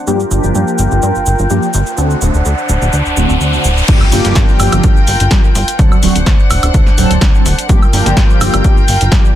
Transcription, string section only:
0.07 1.96 F4 medium
0.07 1.96 A#4 medium
0.07 1.96 G5 medium
1.98 3.86 D4 medium
1.98 3.86 C5 medium
1.98 3.86 F#5 medium
3.89 5.77 F4 medium
3.89 5.77 A#4 medium
3.89 5.77 G5 loud
5.79 7.67 D4 medium
5.79 7.67 C5 medium
5.79 7.67 F#5 loud
7.69 9.35 F4 medium
7.69 9.35 A#4 medium
7.69 9.35 G5 loud

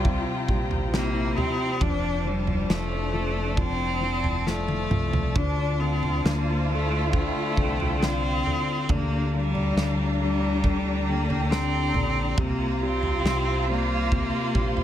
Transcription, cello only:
0.00 0.50 G3 medium
0.94 1.38 A#3 loud
1.37 1.83 C4 loud
1.82 2.28 D4 loud
2.27 2.72 G3 medium
2.70 3.59 A3 loud
3.57 4.48 C4 loud
4.47 5.38 A3 loud
5.37 5.81 D4 loud
5.80 6.27 C4 loud
6.25 6.71 A#3 medium
6.70 7.12 A3 medium
7.13 8.03 A3 loud
8.02 8.91 C4 loud
8.90 9.35 A#3 loud
9.33 10.20 G3 loud
10.21 11.10 G3 loud
11.08 11.53 A#3 loud
11.51 12.41 C4 loud
12.40 12.85 A#3 loud
12.83 13.69 C4 loud
13.71 14.84 A#3 loud

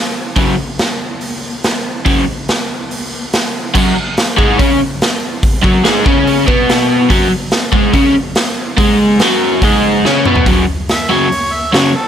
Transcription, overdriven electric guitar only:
0.37 0.54 F#2 medium
0.37 0.54 C#3 loud
0.37 0.55 F#3 loud
2.06 2.23 F#2 medium
2.06 2.23 C#3 loud
2.06 2.24 F#3 loud
3.74 3.95 F#2 medium
3.74 3.96 F#3 loud
3.96 muted overdriven electric guitar stroke medium
4.37 4.58 G#2 loud
4.37 4.58 G#3 loud
4.58 4.79 C#3 medium
4.58 4.79 C#4 loud
5.63 5.84 F#2 medium
5.63 5.85 F#3 medium
5.84 6.05 G#2 loud
5.84 6.06 G#3 loud
6.05 6.46 C#3 loud
6.05 6.47 C#4 loud
6.47 7.10 B2 loud
6.47 7.10 B3 loud
7.09 7.29 F#2 loud
7.09 7.31 F#3 loud
7.30 muted overdriven electric guitar stroke medium
7.72 7.93 G#2 loud
7.72 7.94 G#3 loud
7.93 8.15 C#3 medium
7.93 8.15 C#4 loud
8.77 9.20 G#2 medium
8.77 9.20 G#3 loud
9.21 9.63 F#2 medium
9.21 9.63 F#3 loud
9.63 10.05 G#2 medium
9.63 10.05 G#3 loud
10.05 10.26 C#3 medium
10.05 10.26 C#4 medium
10.26 10.47 B2 medium
10.26 10.47 B3 loud
10.47 10.64 F#2 medium
10.47 10.64 C#3 medium
10.47 10.65 F#3 loud
11.10 11.27 F#2 loud
11.10 11.28 C#3 medium
11.10 11.28 F#3 loud
11.73 11.90 F#2 medium
11.73 11.91 C#3 medium
11.73 11.91 F#3 medium

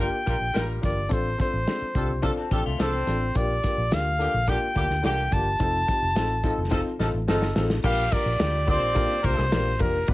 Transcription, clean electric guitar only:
2.37 2.51 C4 medium
2.37 2.51 A4 medium
2.52 2.65 G4 medium
2.66 2.79 A3 medium
2.66 2.79 F4 medium
2.80 2.93 F3 medium
2.80 2.93 D4 medium
2.94 3.33 C4 medium

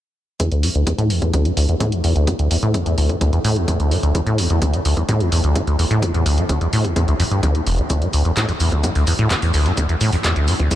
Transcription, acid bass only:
0.40 0.50 E2 medium
0.52 0.65 D2 medium
0.63 0.70 G2 medium
0.75 0.85 D2 medium
0.87 0.93 E2 medium
0.98 1.11 A2 medium
1.10 1.20 E2 medium
1.22 1.31 E2 medium
1.33 1.47 D2 medium
1.45 1.52 G2 medium
1.57 1.67 D2 medium
1.69 1.75 E2 medium
1.80 1.94 A2 medium
1.92 2.02 E2 medium
2.04 2.14 E2 medium
2.16 2.29 D2 medium
2.27 2.34 G2 medium
2.39 2.49 D2 medium
2.51 2.57 E2 medium
2.63 2.76 A2 loud
2.74 2.84 E2 medium
2.86 2.96 E2 medium
2.98 3.11 D2 medium
3.09 3.16 G2 medium
3.21 3.31 D2 medium
3.33 3.39 E2 medium
3.44 3.58 A2 loud
3.56 3.66 E2 medium
3.68 3.78 E2 medium
3.80 3.93 D2 medium
3.91 3.98 G2 medium
4.03 4.13 D2 medium
4.15 4.21 E2 medium
4.27 4.40 A2 medium
4.38 4.48 E2 medium
4.50 4.60 E2 medium
4.62 4.75 D2 medium
4.74 4.80 G2 medium
4.85 4.95 D2 medium
4.97 5.03 E2 medium
5.09 5.22 A2 medium
5.20 5.30 E2 medium
5.32 5.42 E2 medium
5.44 5.57 D2 medium
5.56 5.62 G2 medium
5.67 5.77 D2 medium
5.79 5.85 E2 medium
5.91 6.04 A2 loud
6.02 6.12 E2 medium
6.14 6.24 E2 medium
6.26 6.39 D2 medium
6.38 6.44 G2 medium
6.49 6.59 D2 medium
6.61 6.68 E2 medium
6.73 6.86 A2 loud
6.84 6.94 E2 medium
6.96 7.06 E2 medium
7.08 7.14 D2 medium
7.19 7.23 F2 medium
7.31 7.41 G2 medium
7.43 7.56 D2 loud
7.55 7.61 E2 medium
7.66 7.80 E1 medium
7.78 7.82 A2 medium
7.90 8.03 D2 medium
8.02 8.08 G2 medium
8.13 8.23 D2 medium
8.25 8.32 E2 medium
8.37 8.46 A2 medium
8.48 8.52 F2 medium
8.60 8.70 E2 medium
8.72 8.85 D2 medium
8.84 8.90 G2 medium
8.95 9.05 D2 medium
9.07 9.14 E2 medium
9.19 9.28 A2 medium
9.30 9.34 F2 medium
9.42 9.52 E2 medium
9.54 9.67 D2 medium
9.66 9.72 G2 medium
9.77 9.87 D2 medium
9.89 9.96 E2 medium
10.01 10.11 A2 medium
10.13 10.16 F2 medium
10.24 10.34 E2 medium
10.36 10.49 D2 medium
10.48 10.54 G2 medium
10.59 10.69 D2 medium
10.71 10.75 E2 medium

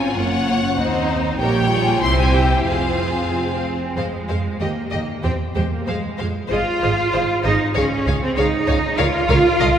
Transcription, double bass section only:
0.00 0.15 G#1 soft
0.16 0.78 F#1 soft
0.78 1.40 D#2 soft
1.40 1.98 A#1 medium
2.02 2.66 C2 medium
2.66 3.75 F1 soft
3.97 4.05 F2 medium
4.29 4.37 F2 soft
4.61 4.69 D#2 soft
4.92 5.00 D#2 medium
5.24 5.32 E2 medium
5.56 5.64 E2 medium
5.88 5.96 F2 soft
6.20 6.28 F2 medium
6.51 6.59 G#1 medium
6.84 6.92 G#1 medium
7.14 7.22 G#1 medium
7.46 7.54 G#1 medium
7.76 7.84 C#2 medium
8.07 8.15 C#2 medium
8.37 8.45 C#2 medium
8.68 8.76 C#2 medium
8.99 9.07 C#2 medium
9.29 9.37 C#2 medium
9.60 9.68 C2 medium

